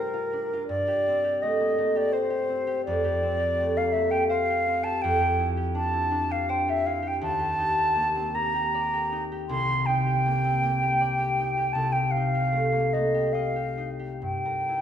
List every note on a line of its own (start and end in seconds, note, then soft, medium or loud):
0.00 0.68 G2 soft
0.00 3.49 G3 soft
0.00 0.32 D4 soft
0.00 0.12 F4 soft
0.00 0.67 A#4 medium
0.00 0.71 A#4 soft
0.14 0.52 F4 soft
0.33 0.72 D4 soft
0.53 0.73 F4 soft
0.68 2.88 G2 soft
0.68 1.44 D5 medium
0.88 1.23 G4 soft
1.08 2.48 C4 soft
1.24 1.94 G4 soft
1.42 1.77 A3 soft
1.42 1.98 D#5 medium
1.60 1.90 A#3 soft
1.78 3.59 A3 soft
1.96 2.29 G4 soft
1.96 2.14 D5 medium
2.12 2.85 C5 medium
2.12 4.29 C5 soft
2.30 2.66 G4 soft
2.49 3.22 C4 soft
2.67 3.03 G4 soft
2.85 5.03 F2 soft
2.85 3.79 D5 medium
3.04 3.38 G4 soft
3.23 4.66 C4 soft
3.39 4.10 G4 soft
3.60 3.92 A3 soft
3.76 4.06 A#3 soft
3.76 3.94 F5 medium
3.92 5.05 A3 soft
3.92 4.12 E5 medium
4.11 4.49 G4 soft
4.11 4.27 G5 medium
4.28 6.48 C5 soft
4.28 4.85 F5 medium
4.50 4.84 G4 soft
4.67 7.26 C4 soft
4.84 5.19 G4 soft
4.84 5.03 A5 medium
5.02 7.26 F2 soft
5.02 5.49 G5 medium
5.20 5.56 G4 soft
5.40 5.92 E4 soft
5.57 6.29 G4 soft
5.75 6.10 D4 soft
5.75 6.33 A5 medium
5.93 6.26 E4 soft
6.11 10.01 D4 soft
6.30 6.67 G4 soft
6.30 6.51 F5 medium
6.49 7.25 C5 soft
6.49 6.71 G5 medium
6.68 7.01 G4 soft
6.68 6.88 E5 medium
6.86 7.25 E4 soft
6.86 7.09 F5 medium
7.03 7.38 G4 soft
7.07 7.22 G5 medium
7.21 9.52 D#2 soft
7.21 8.36 A5 medium
7.39 7.76 G4 soft
7.58 9.11 D#4 soft
7.78 8.53 G4 soft
7.95 8.33 A#3 soft
8.15 8.48 C4 soft
8.35 10.25 A#3 soft
8.35 9.23 A#5 medium
8.54 8.92 G4 soft
8.74 10.99 D5 soft
8.93 9.31 G4 soft
9.12 9.87 D#4 soft
9.32 9.68 G4 soft
9.49 11.74 C2 medium
9.49 9.87 C6 medium
9.69 10.05 G4 soft
9.86 11.38 D#4 soft
9.86 11.74 G5 medium
10.06 10.81 G4 soft
10.26 10.62 A#3 soft
10.44 10.75 C4 soft
10.63 11.78 A#3 soft
10.82 11.19 G4 soft
11.01 11.78 D5 soft
11.20 11.56 G4 soft
11.39 12.15 D#4 soft
11.57 11.94 G4 soft
11.73 14.26 C2 soft
11.73 11.94 A5 medium
11.92 12.33 G4 soft
11.92 12.13 G5 medium
12.11 12.95 F5 medium
12.17 13.76 D#4 soft
12.35 13.13 G4 soft
12.52 12.93 A3 soft
12.72 13.07 A#3 soft
12.93 14.27 A3 soft
12.93 13.34 D#5 soft
13.14 13.54 G4 soft
13.33 14.26 D#5 soft
13.33 13.90 F5 medium
13.56 13.98 G4 soft
13.78 14.27 D#4 soft
13.99 14.81 G4 soft
14.22 14.81 G2 soft
14.22 14.81 G5 medium
14.45 14.81 A#4 soft
14.69 14.81 E4 soft